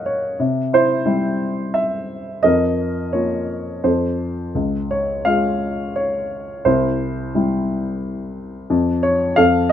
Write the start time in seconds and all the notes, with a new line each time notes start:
Already playing: A#2 F#3 A#3 C#4 A#4 C#5 D#5 F5 F#5
0.06 C#5
0.39 C3
0.73 E4 C5
1.06 G3 C4 E4
1.74 E5
2.43 F2 A#4 D#5
3.13 A#3 C#4 F4 C#5
3.84 F2 A4 C5
4.55 C#2
4.91 C#5
5.25 G#3 C#4 F4 F5
5.96 C#5
6.65 C2 E4 C5
7.35 G3 C4 E4
8.70 F2
9.03 C#5
9.36 F2 A4 F5